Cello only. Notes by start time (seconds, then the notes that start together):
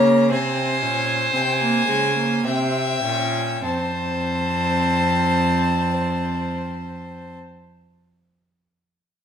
Already playing: C#3
0.30 C3
0.82 A#2
1.34 C3
1.88 C#3
2.45 C3
3.03 A#2
3.64 F2